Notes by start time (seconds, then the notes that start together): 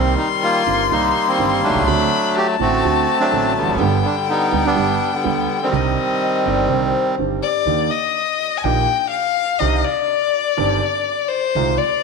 Already playing: C2 C3 D#3 G3 A#3 C4 G4 C6
0.18 D#4
0.43 A#3 F4
0.66 G1 G2 D#3 A#3 C4 G4
0.90 C2 C3 D#3 G3 A#3 C4 D#4 G4
1.27 D#3 G3 C4
1.39 G1 G2 D#3 A#3 C4 G4
1.64 F#3 A3 D4
1.68 B1
1.75 C2
1.80 C#2
1.87 D2 D3 A3 C4 F#4 B5
2.35 G4 A5
2.59 A1 A2 D3 A3 C4 F#4
2.84 D2 D3 A3 C4 F#4
3.20 F#3 A3 D4
3.32 A1 A2 D3 A3 C4 F#4
3.57 D3 G3 B3
3.62 E1 E2
3.68 F1 F2
3.74 F#1 F#2
3.80 G1 G2 D3 G3 B3 G4 G5
4.05 D4
4.29 G3 B3 D#4
4.52 D2 D3 G3 B3 G4
4.66 G3 B3 D4
4.75 G1 G2 D3 G3 B3 G4
5.13 D3 G3 B3
5.24 D2 D3 G3 B3 G4
5.63 D#3 G3 C4
5.72 C2 C3 D#3 C4 D4 G4 D#5
6.22 D#5
6.45 G1 G2 D#3 C4 D4 G4 D5
6.69 C2 C3 D#3 C4 D4 G4 C5
7.18 G1 G2 D#3 C4 D4 G4
7.43 D5
7.66 D#2 D#3 A#3 D4 G4
7.91 D#5
8.57 G#5
8.63 A#1 A#2 D#3 A#3 D4 G4 G5
9.10 F5
9.59 C2 C3 D#3 C4 D4 G4 D#5
9.83 D5
10.57 G1 G2 D#3 C4 D4 G4
11.28 C5
11.55 C2 C3 D#3 G#3 C4 F4
11.77 D5